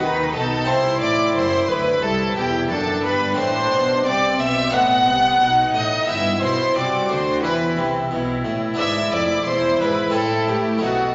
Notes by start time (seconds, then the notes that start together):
Already playing: B3 D#4 F#4
0.00 D#2 D#3 D#4 B4 B5
0.33 B1 B2 A4 A5
0.65 C2 C3 C4 E4 C5 C6
1.01 A1 A2 D5 D6
1.34 F#1 F#2 C5 C6
1.68 D2 B4 B5
2.02 C2 E4 A4 A5
2.36 E1 E2 G4 G5
2.70 F#1 F#2 D4 A4 A5
3.04 G1 G2 B4 B5
3.34 A1 A2 C4 F#4 C5 C6
3.38 C5
3.72 B1 B2
4.05 C2 C3 C4 D5 D6
4.39 B1 B2 E5 E6
4.70 A1 A2 B3 D#4 F#5 F#6
5.06 C2 C3
5.40 B1 B2 D#4
5.74 A1 A2 D#5 D#6
6.03 B3 E4
6.07 G1 G2 E4 E5 E6
6.41 B1 B2 C5 C6
6.75 C2 C3 F#4 D5 D6
7.09 D2 D3 C5 C6
7.43 E2 E3 E4 B4 B5
7.78 C2 C3
8.11 B1 B2 E4
8.45 A1 A2
8.74 B3 D4 E4 E5
8.78 G#1 G#2 E5 E6
9.12 F1 F2 D5 D6
9.46 E1 E2 C5 C6
9.80 G#1 G#2 B4 B5
10.09 A3 C4 E4
10.14 A1 A2 A4 A5
10.48 A2 A3 G4 G5
10.78 A3 B3 D#4
10.82 B1 B2 F#4 F#5